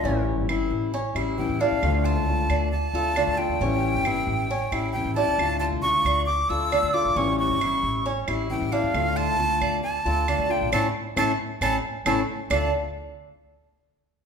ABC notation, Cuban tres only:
X:1
M:4/4
L:1/8
Q:1/4=135
K:Dm
V:1 name="Cuban tres"
^C2 E2 C E2 D- | D F2 d2 A D2 | ^C2 E2 C E2 D- | D F2 d2 A D2 |
^C2 E2 C E2 D- | D F2 d2 A D2 | [A,^CE] z [A,CE] z [A,CE] z [A,CE] z | [DAd] z6 z |]